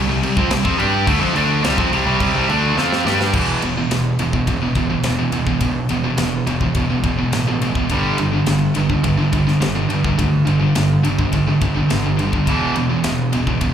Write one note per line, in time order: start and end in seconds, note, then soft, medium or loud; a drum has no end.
0.08 0.21 C2 medium
0.08 0.22 C3 medium
0.08 0.22 G3 medium
0.23 0.36 C2 medium
0.23 0.36 C3 medium
0.23 0.37 G3 medium
0.23 crash medium
0.37 0.50 F2 loud
0.37 0.50 F3 medium
0.37 0.50 C4 loud
0.37 kick loud
0.50 0.63 C2 medium
0.50 0.63 C3 medium
0.50 0.64 G3 medium
0.50 snare loud
0.50 crash medium
0.64 0.77 F2 loud
0.64 0.77 F3 loud
0.64 0.78 C4 loud
0.64 kick loud
0.78 1.05 G2 medium
0.78 1.06 G3 loud
0.78 1.06 D4 medium
0.78 1.06 G4 loud
0.78 crash medium
1.07 1.19 D2 medium
1.07 1.20 D3 loud
1.07 1.20 A3 loud
1.07 kick loud
1.07 crash medium
1.20 1.34 F2 loud
1.20 1.34 F3 loud
1.20 1.34 C4 loud
1.34 1.61 D2 loud
1.34 1.62 D3 medium
1.34 1.63 A3 loud
1.34 1.63 D4 loud
1.34 crash medium
1.63 1.76 C2 loud
1.63 1.77 C3 medium
1.63 1.77 G3 loud
1.63 snare loud
1.63 crash medium
1.77 1.90 F2 medium
1.77 1.91 F3 medium
1.77 1.91 C4 loud
1.77 kick loud
1.91 2.05 C2 loud
1.91 2.05 C3 medium
1.91 2.05 G3 medium
1.91 crash medium
2.06 2.19 C2 loud
2.06 2.20 C3 medium
2.06 2.20 G3 loud
2.20 2.33 C2 medium
2.20 2.34 C3 loud
2.20 2.34 G3 loud
2.20 kick medium
2.20 crash medium
2.34 2.47 C2 medium
2.34 2.48 C3 medium
2.34 2.49 G3 loud
2.49 2.75 D2 loud
2.49 2.76 D3 medium
2.49 2.77 A3 loud
2.49 2.77 D4 medium
2.49 crash medium
2.76 3.02 F2 medium
2.76 3.05 F3 loud
2.76 3.05 C4 loud
2.76 3.05 F4 loud
2.76 snare medium
2.93 snare medium
3.05 3.31 G2 medium
3.05 3.33 G3 medium
3.05 3.33 D4 loud
3.05 3.33 G4 loud
3.05 snare medium
3.21 snare medium
3.33 3.52 E1 medium
3.33 3.61 E2 medium
3.33 3.61 B2 medium
3.33 3.61 E3 loud
3.33 kick loud
3.33 crash loud
3.62 3.81 E1 medium
3.62 3.76 E2 medium
3.62 3.76 B2 medium
3.62 ride medium
3.77 3.89 E2 medium
3.77 3.89 B2 medium
3.90 4.09 E1 medium
3.90 4.16 E2 medium
3.90 4.16 B2 medium
3.90 snare loud
3.90 ride medium
4.19 4.38 E1 medium
4.19 4.32 E2 medium
4.19 4.32 B2 medium
4.19 ride medium
4.33 4.46 E2 medium
4.33 4.46 B2 medium
4.33 kick medium
4.47 4.66 E1 medium
4.47 4.60 E2 medium
4.47 4.60 B2 medium
4.47 kick medium
4.47 ride medium
4.62 4.75 E2 medium
4.62 4.74 B2 medium
4.75 4.94 E1 medium
4.75 4.89 E2 medium
4.75 4.89 B2 medium
4.75 kick medium
4.75 ride medium
4.90 5.03 E2 medium
4.90 5.04 B2 medium
5.04 5.22 E1 medium
5.04 5.17 E2 medium
5.04 5.18 B2 medium
5.04 snare loud
5.04 ride medium
5.19 5.31 E2 medium
5.19 5.31 B2 medium
5.32 5.51 E2 medium
5.32 5.47 E2 medium
5.32 5.46 B2 medium
5.32 ride medium
5.47 5.60 E2 medium
5.47 5.60 B2 medium
5.47 kick medium
5.61 5.80 B1 medium
5.61 5.87 E2 medium
5.61 5.87 B2 medium
5.61 kick medium
5.61 ride loud
5.89 6.09 E1 medium
5.89 6.03 E2 medium
5.89 6.03 B2 medium
5.89 ride medium
6.04 6.17 E2 medium
6.04 6.17 B2 medium
6.18 6.37 E1 medium
6.18 6.44 E2 medium
6.18 6.44 B2 medium
6.18 snare loud
6.18 ride medium
6.47 6.66 E1 medium
6.47 6.60 E2 medium
6.47 6.60 B2 medium
6.47 ride medium
6.61 6.74 E2 medium
6.61 6.75 B2 medium
6.61 kick medium
6.75 6.94 E1 medium
6.75 6.89 E2 medium
6.75 6.88 B2 loud
6.75 kick medium
6.75 ride medium
6.89 7.03 E2 medium
6.89 7.03 B2 medium
7.04 7.23 E1 medium
7.04 7.17 E2 medium
7.04 7.16 B2 medium
7.04 kick medium
7.04 ride medium
7.18 7.31 E2 medium
7.18 7.31 B2 medium
7.32 7.70 A1 medium
7.32 7.47 E2 medium
7.32 7.46 B2 medium
7.32 snare loud
7.32 ride medium
7.47 7.61 E2 medium
7.47 7.61 B2 medium
7.62 7.75 E2 medium
7.62 7.74 B2 medium
7.62 ride medium
7.75 7.89 E2 medium
7.75 7.90 B2 medium
7.75 kick medium
7.90 8.09 G1 loud
7.90 8.17 G2 medium
7.90 8.17 D3 loud
7.90 8.17 G3 loud
7.90 kick medium
7.90 ride medium
8.18 8.38 G1 medium
8.18 8.31 G2 medium
8.18 8.31 D3 medium
8.18 ride medium
8.32 8.45 G2 medium
8.32 8.45 D3 medium
8.46 8.66 G1 medium
8.46 8.72 G2 medium
8.46 8.72 D3 medium
8.46 snare loud
8.46 ride medium
8.74 8.94 G1 medium
8.74 8.88 G2 medium
8.74 8.88 D3 medium
8.74 ride medium
8.89 9.02 G2 medium
8.89 9.03 D3 medium
8.89 kick medium
9.04 9.23 G1 medium
9.04 9.17 G2 medium
9.04 9.17 D3 medium
9.04 kick medium
9.04 ride medium
9.18 9.31 G2 medium
9.18 9.31 D3 medium
9.32 9.52 G1 medium
9.32 9.46 G2 medium
9.32 9.45 D3 medium
9.32 kick medium
9.32 ride medium
9.47 9.59 G2 medium
9.47 9.60 D3 medium
9.47 snare soft
9.61 9.80 G1 medium
9.61 9.74 G2 medium
9.61 9.74 D3 medium
9.61 snare loud
9.61 ride medium
9.75 9.89 G2 medium
9.75 9.89 D3 medium
9.90 10.08 G2 medium
9.90 10.04 G2 medium
9.90 10.04 D3 medium
9.90 ride medium
10.04 10.17 G2 medium
10.04 10.18 D3 medium
10.04 kick medium
10.18 10.37 D2 medium
10.18 10.44 G2 medium
10.18 10.45 D3 medium
10.18 kick medium
10.18 ride loud
10.47 10.66 G1 medium
10.47 10.60 G2 medium
10.47 10.60 D3 medium
10.47 ride medium
10.61 10.74 G2 medium
10.61 10.75 D3 medium
10.75 10.95 G1 medium
10.75 11.01 G2 medium
10.75 11.01 D3 medium
10.75 snare loud
10.75 ride medium
11.03 11.23 G1 medium
11.03 11.17 G2 medium
11.03 11.17 D3 medium
11.03 ride medium
11.18 11.30 G2 medium
11.18 11.31 D3 medium
11.18 kick medium
11.32 11.52 G1 medium
11.32 11.46 G2 medium
11.32 11.46 D3 medium
11.32 kick medium
11.32 ride medium
11.47 11.60 G2 medium
11.47 11.60 D3 medium
11.61 11.80 G1 medium
11.61 11.74 G2 medium
11.61 11.73 D3 medium
11.61 kick medium
11.61 ride medium
11.74 11.87 G2 medium
11.74 11.88 D3 medium
11.89 12.28 G1 medium
11.89 12.02 G2 medium
11.89 12.01 D3 medium
11.89 snare loud
11.89 ride medium
12.02 12.16 G2 medium
12.02 12.16 D3 medium
12.17 12.31 G2 medium
12.17 12.31 D3 medium
12.17 ride medium
12.32 12.45 G2 medium
12.32 12.46 D3 medium
12.32 kick medium
12.45 12.66 E1 medium
12.45 12.73 E2 medium
12.45 12.73 B2 medium
12.45 12.73 E3 loud
12.45 kick loud
12.45 ride medium
12.75 12.95 E1 medium
12.75 12.88 E2 medium
12.75 12.88 B2 medium
12.75 ride medium
12.89 13.02 E2 medium
12.89 13.02 B2 medium
13.03 13.23 E1 medium
13.03 13.30 E2 medium
13.03 13.30 B2 medium
13.03 snare loud
13.03 ride medium
13.32 13.52 E1 medium
13.32 13.46 E2 medium
13.32 13.46 B2 medium
13.32 ride medium
13.47 13.59 E2 medium
13.47 13.60 B2 medium
13.47 kick medium
13.61 13.74 E1 medium
13.61 13.74 E2 medium
13.61 13.73 B2 medium
13.61 kick medium
13.61 ride medium